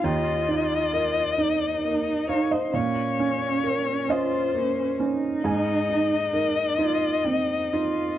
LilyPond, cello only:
\new Staff \with { instrumentName = "Cello" } { \time 6/8 \key aes \major \tempo 4. = 44 f'4. ees'4. | des'4. f'8 des'8 ees'8~ | ees'4. f'8 ees'8 f'8 | }